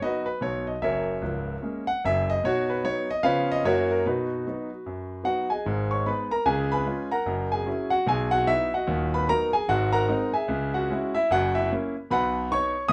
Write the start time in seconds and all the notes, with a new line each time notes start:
0.01 F#3 B3 D#4 F#4 B4 D#5
0.26 B4
0.41 B1 B2 C#5
0.67 D#5
0.82 F#1 F#2 A#4 C#5 E5
1.22 C#1 C#2
1.62 G#3 A#3 C#4
1.87 F#5
2.05 F#1 F#2 E5
2.30 D#5
2.44 B2 D#4 F#4 C#5
2.70 B4
2.83 F#3 B3 D#4 C#5
3.11 D#5
3.23 C#3 F3 B3 F4 B4 C#5 F5
3.52 D#5
3.64 F#2 F#3 A#3 E4 F#4 A#4 C#5
3.91 A#4
4.06 B2 D#4 F#4 B4
4.46 F#3 B3 D#4
4.86 F#2
5.23 F#3 B3 D#4 F#4 F#5
5.50 G#4 D#5 G#5
5.66 G#1 G#2
5.91 C#5 C#6
6.06 G#3 B3 D#4 B4 B5
6.31 A#4 A#5
6.46 C#2 C#3 G#4 G#5
6.72 B4 G#5 B5
6.86 G#3 C#4 F4
7.11 A#4 F#5 A#5
7.26 F#1 F#2
7.52 G#4 G#5
7.66 F#3 C#4 E4
7.90 F#4 F#5
8.06 B1 B2 G#4 G#5
8.31 F#4 F#5
8.47 F#3 B3 D#4 E4 E5
8.74 F#4 D#5 F#5
8.87 D#1 D#2
9.14 B4 B5
9.28 F#3 B3 D#4 A#4 A#5
9.53 G#4 G#5
9.68 G#1 G#2 F#4 F#5
9.92 A#4 F#5 A#5
10.08 G#3 C4 D#4
10.34 G#4 E5 G#5
10.48 C#2 C#3
10.74 F#4 F#5
10.90 G#3 C#4 E4
11.15 E4 E5
11.31 F#1 F#2 F#4 F#5
11.55 E4 E5
11.71 A#3 C#4 E4
12.11 B1 B2 B4 F#5 B5
12.51 B3 D#4 C#5 C#6
12.88 D#1 D#2 D#6